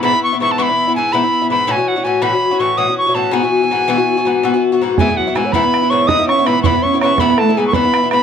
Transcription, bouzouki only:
X:1
M:9/8
L:1/16
Q:3/8=109
K:E
V:1 name="Bouzouki"
[G,,E,B,E] [E,B,E]2 [E,B,E] [G,,E,B,E]2 [G,,E,B,E] [E,B,E]2 [E,B,E] [G,,E,B,E]2 [G,,E,B,E] [E,B,E]2 [E,B,E] [G,,E,B,E]2 | [A,,E,CF] [E,CF]2 [E,CF] [A,,E,CF]2 [A,,E,CF] [E,CF]2 [E,CF] [A,,E,CF]2 [A,,E,CF] [E,CF]2 [E,CF] [A,,E,CF]2 | [G,,E,B,F] [E,B,F]2 [E,B,F] [G,,E,B,F]2 [G,,E,B,F] [E,B,F]2 [E,B,F] [G,,E,B,F]2 [G,,E,B,F] [E,B,F]2 [E,B,F] [G,,E,B,F]2 | [G,,E,B,E] [E,B,E]2 [E,B,E] [G,,E,B,E]2 [G,,E,B,E] [E,B,E]2 [E,B,E] [G,,E,B,E]2 [G,,E,B,E] [E,B,E]2 [E,B,E] [G,,E,B,E]2 |
[G,,E,B,E] [E,B,E]2 [E,B,E] [G,,E,B,E]2 [G,,E,B,E] [E,B,E]2 [E,B,E] [G,,E,B,E]2 [G,,E,B,E] [E,B,E]2 [E,B,E] [G,,E,B,E]2 |]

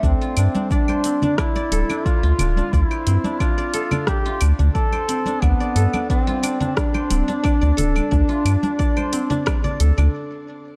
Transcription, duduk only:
X:1
M:4/4
L:1/8
Q:1/4=89
K:Dm
V:1 name="Duduk"
C2 D2 E2 F2 | E2 F2 G z A2 | =B,2 C2 D4- | D6 z2 |]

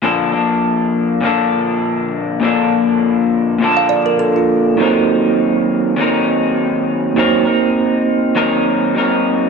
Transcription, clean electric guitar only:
X:1
M:4/4
L:1/8
Q:"Swing 16ths" 1/4=101
K:Bb
V:1 name="Clean electric guitar"
[B,,D,F,B,DA] [F,B,DA]3 [B,,D,F,B,DA]4 | [B,,D,F,B,DA]4 [B,,D,F,B,DA]4 | [E,_G,CEB]4 [E,G,CEB]4 | [E,_G,CEB] [CEB]3 [E,G,CEB]2 [G,CEB]2 |]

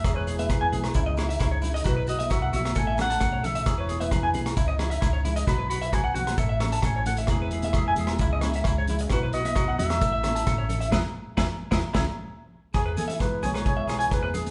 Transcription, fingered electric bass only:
X:1
M:4/4
L:1/16
Q:1/4=132
K:E
V:1 name="Fingered electric bass" clef=bass
E,,,4- E,,, E,,, B,,,2 C,,4 C,,4 | B,,,4- B,,, B,,, B,,,2 A,,,4 B,,,4 | E,,,4- E,,, E,,, B,,,2 C,,4 C,,4 | B,,,4- B,,, B,,, B,,,2 A,,,4 A,,,4 |
E,,,4- E,,, E,,, E,,,2 C,,4 C,,4 | B,,,4- B,,, B,,, E,,2 A,,,4 A,,,4 | E,, z3 E,, z2 E,, z C,, z6 | E,,2 E,4 B,,,6 E,,4 |]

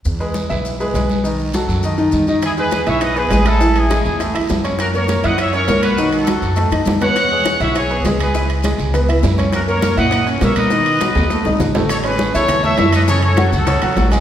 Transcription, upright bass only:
X:1
M:4/4
L:1/8
Q:1/4=203
K:E
V:1 name="Upright bass" clef=bass
E,,3 B,,,3 B,,,2- | B,,,3 F,,3 E,,2- | E,,3 B,,,3 A,,,2- | A,,,3 E,,2 E,, F,,2- |
F,,3 F,,3 B,,,2- | B,,,3 F,,2 F,, E,,2- | E,,3 B,,,3 C,,2- | C,,3 C,,3 F,,2- |
F,,3 ^A,,3 B,,2- | B,,3 D,,2 B,,, A,,,2- | A,,,3 E,,3 F,,2- | F,,3 C,,2 B,,, A,,,2 |]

